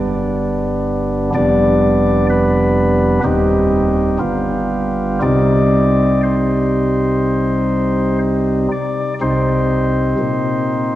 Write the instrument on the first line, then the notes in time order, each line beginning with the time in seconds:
pipe organ
Already playing: G1 G2 G3 B3 D4
1.34 F1 F2 G3 B3 D4 D5
2.30 B4
3.24 D#1 D#2 G3 C4 D#4 G4
4.19 G1 G2 G3 B3 F4
5.22 C2 C3 G3 C4 D#4 D5
6.23 C5
8.72 D5
9.21 C2 C3 C4 D#4 C5
10.19 A#2